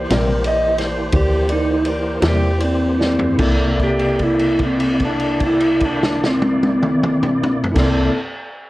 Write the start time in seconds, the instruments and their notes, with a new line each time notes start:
Already playing: tonewheel organ E3 A#3 G4 C5, electric slide guitar C5
0.10 fm bass A#1, clean electric guitar C3 G3 A#3 E4, tine electric piano E4 A#4 D5, electric slide guitar A#4, snare, ride
0.43 tine electric piano E4 A#4 D5, ride
0.48 electric slide guitar D#5
0.78 tine electric piano E4 A#4 D5, electric slide guitar C5, snare, ride
1.12 fm bass D2, tine electric piano E4 A#4 D5, electric slide guitar G4, kick, ride
1.48 tine electric piano E4 A#4 D5, ride
1.52 electric slide guitar D#4
1.85 tine electric piano E4 A#4 D5, ride
1.90 electric slide guitar A#4
2.20 fm bass E2, clean electric guitar C3 G3 A#3 E4, tine electric piano E4 A#4 D5, snare, ride
2.28 electric slide guitar G4
2.59 tine electric piano E4 A#4 D5, ride
2.64 electric slide guitar C4
2.98 tine electric piano E4 A#4 D5, snare
3.03 electric slide guitar C4
3.19 floor tom
3.36 fm bass C2, clean electric guitar C3, tine electric piano E4 A4, kick, crash
3.40 tonewheel organ A#3 E4 D5, clean electric guitar A#3 E4, tine electric piano A#4 D5
3.79 kick, crash
3.83 electric slide guitar G4
3.99 crash
4.19 kick, crash
4.23 electric slide guitar E4
4.39 crash
4.59 kick, crash
4.66 electric slide guitar C4
4.80 crash
5.00 kick, crash
5.05 electric slide guitar D4
5.20 crash
5.40 kick, crash
5.46 electric slide guitar E4
5.60 crash
5.80 kick, crash
5.85 electric slide guitar D4
6.03 snare
6.24 electric slide guitar C4, snare
6.42 high tom
6.63 high tom
6.83 mid tom
7.03 mid tom
7.23 mid tom
7.43 mid tom
7.64 floor tom
7.72 clean electric guitar C3, tine electric piano E4 A4, crash
7.76 fm bass C2, clean electric guitar A#3, tonewheel organ A#3 E4 A4 D5, electric slide guitar C4, tine electric piano A#4 D5, kick, snare
7.81 clean electric guitar E4 A4